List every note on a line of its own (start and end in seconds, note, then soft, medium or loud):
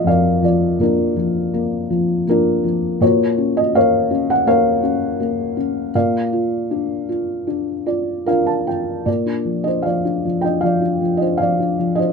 0.00 0.42 F3 soft
0.00 1.54 A#3 soft
0.00 0.08 A#4 medium
0.00 0.08 D5 medium
0.00 3.04 D#5 medium
0.00 0.07 F5 medium
0.00 3.03 G5 medium
0.04 2.97 F2 medium
0.04 0.43 D5 medium
0.04 0.45 F5 medium
0.08 0.80 A#4 medium
0.42 1.15 F3 soft
0.42 0.82 D5 medium
0.79 2.24 A#2 soft
0.79 2.26 D4 soft
0.79 2.25 F4 soft
0.79 1.51 A#4 medium
1.16 1.89 F3 soft
1.54 2.26 A#3 soft
1.90 2.62 F3 soft
2.27 2.99 A#3 soft
2.27 2.99 D4 medium
2.27 2.99 F4 soft
2.27 3.01 A#4 medium
2.64 3.00 F3 soft
3.01 5.90 A#2 medium
3.01 4.44 F#4 medium
3.01 3.75 A#4 medium
3.01 3.58 C#5 medium
3.38 4.09 C#4 soft
3.57 3.76 D#5 medium
3.75 4.45 A#3 soft
3.75 4.46 A#4 medium
3.75 4.46 C#5 medium
3.75 4.31 F5 medium
4.11 4.82 C#4 soft
4.30 4.48 F#5 medium
4.46 5.18 A#3 medium
4.46 5.91 A#4 medium
4.46 5.91 C#5 medium
4.46 5.94 F5 medium
4.83 5.55 C#4 soft
5.20 5.93 A#3 soft
5.57 5.94 C#4 soft
5.95 9.04 A#2 medium
5.95 8.25 A#4 medium
5.95 7.85 D5 medium
5.95 8.24 F5 medium
6.33 7.07 F4 soft
6.71 7.46 D4 soft
7.09 7.85 F4 soft
7.47 8.26 D4 soft
7.86 8.27 F4 soft
7.86 8.25 D5 medium
8.26 9.05 D4 soft
8.26 8.66 F4 soft
8.26 9.07 A#4 medium
8.26 8.47 F5 medium
8.47 8.66 A5 soft
8.67 9.06 F4 soft
8.67 9.04 G5 soft
9.06 12.12 A#2 soft
9.06 9.63 A#4 soft
9.06 9.67 D5 medium
9.26 9.64 D4 soft
9.45 9.84 F3 soft
9.64 10.03 D4 soft
9.64 9.85 C5 soft
9.64 9.85 D#5 medium
9.82 10.23 F3 soft
9.82 10.41 D5 soft
9.82 10.39 F5 medium
10.05 10.42 D4 soft
10.25 10.61 F3 soft
10.41 10.80 D4 soft
10.41 10.63 D#5 medium
10.41 10.63 G5 medium
10.61 11.00 F3 soft
10.61 11.22 F5 medium
10.65 11.18 D5 soft
10.82 11.19 D4 soft
11.01 11.38 F3 soft
11.17 11.58 D4 soft
11.17 11.40 D#5 medium
11.21 11.40 C5 soft
11.38 11.78 F3 soft
11.38 11.95 D5 medium
11.38 11.99 F5 medium
11.60 11.96 D4 soft
11.79 12.13 F3 soft
11.95 12.13 D4 soft
11.95 12.13 D#5 medium
12.00 12.13 C5 soft